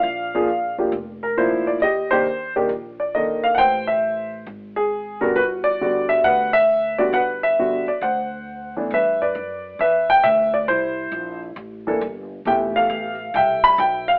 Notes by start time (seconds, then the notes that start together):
Already playing: D5 F5
0.03 A#1
0.35 F3 A#3 D4 G#4
0.78 F3 A#3 D4 G4
0.92 F1
1.23 A#4
1.37 F3 A#3 D4 E4 C5
1.67 D5
1.80 D#2 G4 D#5
2.11 D#3 A#3 D4 G4 C5
2.56 D#3 A#3 D4 G4
2.69 A#1
3.00 D5
3.15 D#3 A#3 D4 A4 D#5
3.44 F5
3.55 A1 F#5 G5
3.59 C5
3.87 E5
4.47 G#1
4.76 G#4
5.21 D3 G3 B3 F#4 A#4
5.36 G1 F#4 B4
5.64 D5
5.81 D3 G3 B3 F#4
6.09 E5, muted upright bass stroke
6.24 D2 B4 F#5
6.53 E5
6.98 D3 G3 B3 F#4 D5
7.13 G1 B4 F#5
7.43 E5
7.59 D3 G3 B3 F#4
7.86 D5, muted upright bass stroke
8.01 D2 C5 F#5
8.77 E3 A3 B3 D4
8.90 G2 B4 E5
9.22 B4 D5
9.35 F#2
9.79 E2 B4 E5
10.10 G5
10.24 D2 E5
10.54 D5
10.68 C2 E4 C5
11.12 A#1
11.56 A1
11.87 E3 A#3 D4 A4
12.01 G1
12.45 F1 E3 A3 B3 G4 E5 G5
12.76 A4 F5
12.90 A1
13.34 C2 E5 G5
13.64 B5
13.78 B1 G5
14.08 F5